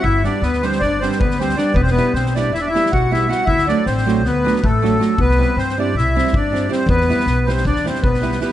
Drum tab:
SD |--o-ooooo-oo-oooo-|-oo-ooo-o-oo--o-o-|-oo-ooo-o-oo--o-o-|-oo-oo--o-oo--o-o-|
BD |o-------o---o-----|o-----------o-----|o-----------o-----|o-----------o-----|

SD |-oooo-oooooo-oooo-|
BD |o-------o---o-----|